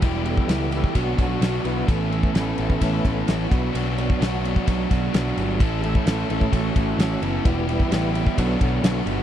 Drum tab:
CC |x---------------|----------------|----------------|----------------|
RD |--x-x-x-x-x-x-x-|x-x-x-x-x-x-x-x-|x-x-x-x-x-x-x-x-|x-x-x-x-x-x-x-x-|
SD |----o-------o---|----o-------o---|----o-------o---|----o-------o---|
BD |o--o---oo-o-----|o--o---oo-o---o-|---o---oo-o-----|o--o---oo-o-----|

CC |----------------|
RD |x-x-x-x-x-x-x-x-|
SD |----o-------o---|
BD |o--o---oo-o-----|